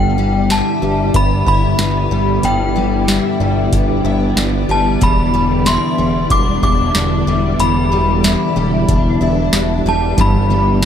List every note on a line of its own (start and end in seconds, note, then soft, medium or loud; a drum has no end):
0.00 0.62 G1 loud
0.00 2.43 G2 medium
0.00 4.98 D3 medium
0.00 0.18 G3 medium
0.00 4.98 G3 medium
0.00 0.17 B3 medium
0.00 10.14 B3 medium
0.00 0.53 D4 medium
0.00 4.98 E4 medium
0.00 10.85 D5 medium
0.00 0.53 G5 medium
0.18 0.82 G3 medium
0.50 1.46 E4 medium
0.50 1.17 A5 medium
0.50 snare loud
0.50 closed hi-hat medium
0.82 1.11 G1 medium
0.82 2.11 G3 medium
1.14 1.43 G1 loud
1.14 1.78 B3 medium
1.14 1.47 B5 loud
1.14 kick medium
1.14 closed hi-hat medium
1.46 1.75 G1 loud
1.46 3.08 E4 medium
1.46 2.47 B5 loud
1.46 kick medium
1.79 2.07 G1 medium
1.79 3.72 B3 medium
1.79 snare loud
1.79 closed hi-hat medium
2.11 2.39 G1 loud
2.11 2.75 G3 medium
2.43 3.20 G1 loud
2.43 5.01 G2 medium
2.43 4.34 G5 medium
2.43 closed hi-hat medium
2.76 3.40 G3 medium
3.08 4.04 E4 medium
3.08 snare loud
3.08 closed hi-hat medium
3.40 3.69 G1 loud
3.40 4.69 G3 medium
3.72 4.01 G1 medium
3.72 4.37 B3 medium
3.72 kick medium
3.72 closed hi-hat medium
4.04 4.33 G1 loud
4.04 5.65 E4 medium
4.36 4.65 G1 loud
4.36 6.30 B3 medium
4.36 snare loud
4.36 closed hi-hat medium
4.69 4.98 G1 medium
4.69 5.33 G3 medium
4.69 5.04 A5 medium
5.01 5.78 E1 loud
5.01 7.58 E2 medium
5.01 10.14 D3 medium
5.01 10.85 G3 medium
5.01 10.85 E4 medium
5.01 5.69 B5 medium
5.01 kick medium
5.01 closed hi-hat medium
5.34 5.98 G3 medium
5.66 6.62 E4 medium
5.66 6.33 C6 medium
5.66 snare medium
5.66 closed hi-hat medium
5.98 6.27 E1 medium
5.98 7.27 G3 medium
6.30 6.59 E1 loud
6.30 6.95 D4 medium
6.30 6.62 D6 loud
6.30 kick medium
6.30 closed hi-hat medium
6.63 6.91 E1 loud
6.63 8.23 E4 medium
6.63 7.63 D6 medium
6.63 kick medium
6.95 7.23 E1 medium
6.95 8.88 D4 medium
6.95 snare loud
6.95 closed hi-hat medium
7.27 7.56 E1 medium
7.27 7.91 G3 medium
7.59 8.36 E1 loud
7.59 10.18 E2 medium
7.59 9.49 B5 medium
7.59 closed hi-hat medium
7.92 8.56 G3 medium
8.24 9.20 E4 medium
8.24 snare loud
8.24 closed hi-hat medium
8.24 tambourine soft
8.56 8.85 E1 medium
8.56 9.85 G3 medium
8.88 9.17 E1 medium
8.88 9.53 D4 medium
8.88 kick medium
8.88 closed hi-hat medium
9.21 9.49 E1 loud
9.21 10.82 E4 medium
9.53 9.82 E1 medium
9.53 10.85 D4 medium
9.53 snare loud
9.53 closed hi-hat medium
9.53 tambourine medium
9.86 10.14 E1 loud
9.86 10.50 G3 medium
9.86 10.20 A5 medium
10.17 10.85 G1 loud
10.17 10.50 G2 medium
10.17 10.85 G2 medium
10.17 10.85 D3 medium
10.17 10.50 D3 medium
10.17 10.50 E3 medium
10.17 10.51 G3 medium
10.17 10.85 B3 medium
10.17 10.49 B3 medium
10.17 kick loud
10.17 closed hi-hat medium
10.21 10.47 E4 medium
10.21 10.85 B5 medium
10.48 10.85 G3 medium
10.48 10.83 B3 soft
10.48 10.81 E4 soft
10.53 10.82 E3 soft
10.53 10.83 G3 soft
10.81 10.85 G2 medium